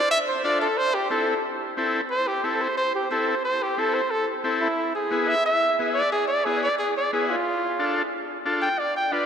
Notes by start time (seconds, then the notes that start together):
Already playing: D5
0.11 E5
0.28 C5
0.44 D4 F4 A4 D5
0.62 A4
0.78 C5
0.94 G4
1.10 C4 E4 A4
1.77 C4 E4 A4
2.10 C5
2.27 G4
2.44 C4 E4 A4
2.61 C5
2.77 C5
2.95 G4
3.11 C4 E4 A4
3.29 C5
3.45 C5
3.63 G4
3.78 C4 E4 A4
3.94 C5
4.11 A4
4.44 C4 E4 A4
4.61 E4
4.95 G#4
5.11 B3 E4 G#4
5.28 E5
5.46 E5
5.79 B3 E4 G#4
5.94 D5
6.12 G#4
6.28 D5
6.45 B3 E4 G#4
6.63 D5
6.78 G#4
6.97 D5
7.13 B3 E4 G#4
7.30 F4
7.79 D4 F4 A4
8.46 D4 F4 A4
8.62 G5
8.79 D5
8.97 G5
9.12 D4 F4 B4 D5